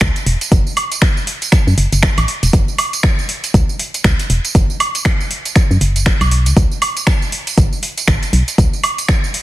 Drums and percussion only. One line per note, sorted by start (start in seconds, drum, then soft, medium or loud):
0.01 finger snap loud
0.01 kick loud
0.01 closed hi-hat medium
0.16 closed hi-hat medium
0.16 tambourine soft
0.26 open hi-hat loud
0.41 closed hi-hat medium
0.41 tambourine medium
0.52 kick loud
0.52 closed hi-hat medium
0.52 tambourine medium
0.67 tambourine soft
0.77 open hi-hat loud
0.77 high woodblock medium
0.92 closed hi-hat medium
0.92 tambourine medium
1.02 finger snap loud
1.02 kick loud
1.02 closed hi-hat medium
1.17 tambourine soft
1.27 open hi-hat loud
1.42 closed hi-hat medium
1.42 tambourine medium
1.52 finger snap medium
1.52 kick loud
1.52 closed hi-hat medium
1.67 tambourine soft
1.78 open hi-hat loud
1.92 closed hi-hat medium
1.92 tambourine medium
2.02 finger snap loud
2.02 kick loud
2.02 closed hi-hat medium
2.02 tambourine medium
2.18 closed hi-hat medium
2.18 tambourine soft
2.18 high woodblock medium
2.28 open hi-hat loud
2.43 closed hi-hat medium
2.43 tambourine medium
2.53 kick loud
2.53 closed hi-hat medium
2.53 tambourine medium
2.68 tambourine soft
2.78 open hi-hat loud
2.78 high woodblock medium
2.93 closed hi-hat medium
2.93 tambourine medium
3.03 finger snap loud
3.03 kick loud
3.03 closed hi-hat medium
3.19 tambourine soft
3.29 open hi-hat loud
3.44 closed hi-hat medium
3.44 tambourine medium
3.54 kick loud
3.54 closed hi-hat medium
3.54 tambourine medium
3.69 tambourine soft
3.79 open hi-hat loud
3.94 closed hi-hat medium
3.94 tambourine medium
4.04 finger snap loud
4.04 kick loud
4.04 closed hi-hat medium
4.04 tambourine medium
4.19 closed hi-hat medium
4.19 tambourine soft
4.30 open hi-hat loud
4.45 closed hi-hat medium
4.45 tambourine medium
4.55 kick loud
4.55 closed hi-hat medium
4.70 tambourine soft
4.80 open hi-hat loud
4.80 high woodblock medium
4.95 closed hi-hat medium
4.95 tambourine medium
5.05 finger snap loud
5.05 kick loud
5.05 closed hi-hat medium
5.20 tambourine soft
5.31 open hi-hat loud
5.45 closed hi-hat medium
5.45 tambourine medium
5.55 finger snap medium
5.55 kick loud
5.55 closed hi-hat medium
5.55 tambourine medium
5.71 tambourine soft
5.81 open hi-hat loud
5.96 closed hi-hat soft
5.96 tambourine medium
6.06 finger snap loud
6.06 kick loud
6.06 closed hi-hat medium
6.06 tambourine medium
6.21 closed hi-hat medium
6.21 tambourine soft
6.21 high woodblock medium
6.31 open hi-hat loud
6.46 closed hi-hat medium
6.46 tambourine medium
6.57 kick loud
6.57 closed hi-hat medium
6.57 tambourine medium
6.72 tambourine soft
6.82 open hi-hat loud
6.82 high woodblock medium
6.97 closed hi-hat medium
6.97 tambourine medium
7.07 finger snap loud
7.07 kick loud
7.07 closed hi-hat medium
7.07 tambourine medium
7.22 tambourine soft
7.32 open hi-hat loud
7.47 closed hi-hat soft
7.47 tambourine medium
7.57 kick loud
7.57 closed hi-hat medium
7.57 tambourine medium
7.72 tambourine soft
7.83 open hi-hat loud
7.98 closed hi-hat medium
7.98 tambourine medium
8.08 finger snap loud
8.08 kick loud
8.08 closed hi-hat medium
8.23 closed hi-hat medium
8.23 tambourine soft
8.33 open hi-hat loud
8.48 closed hi-hat medium
8.48 tambourine medium
8.58 kick loud
8.58 closed hi-hat medium
8.58 tambourine medium
8.73 tambourine soft
8.84 open hi-hat loud
8.84 high woodblock medium
8.98 closed hi-hat medium
8.98 tambourine medium
9.08 finger snap loud
9.08 kick loud
9.08 closed hi-hat medium
9.08 tambourine medium
9.24 tambourine soft
9.34 open hi-hat loud